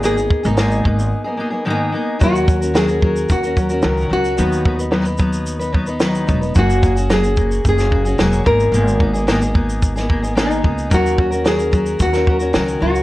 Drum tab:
SH |xx-xxx-x--------|xxxxxx-xxxxxxx-x|xx-xxxxxxx-xxxxx|xxxxxxxxxx-xxx-x|
SD |----o-----------|----o-------o---|----o-------o---|----o----o--o---|
BD |--o---o---------|o-o---o-o-o-----|--o---o---o---o-|o-o---o-o-o---o-|

SH |xx-xxx-xxx-xxx-x|xx-xxxxxxx-xxx-x|
SD |----o----o--o---|----o----o--o---|
BD |--o---o-o-o---o-|o-o---o-o-o-----|